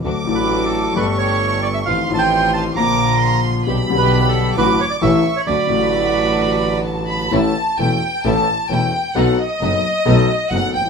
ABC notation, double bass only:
X:1
M:4/4
L:1/8
Q:1/4=132
K:D
V:1 name="Double bass" clef=bass
D,, A,,,3 G,,,4 | A,,, A,,,3 _B,,,4 | B,,, B,,,3 A,,, z A,,, z | D,, A,,,6- A,,, |
A,,, z E,,, z A,,, z E,,, z | B,,, z F,,, z B,,, z F,,, A,,, |]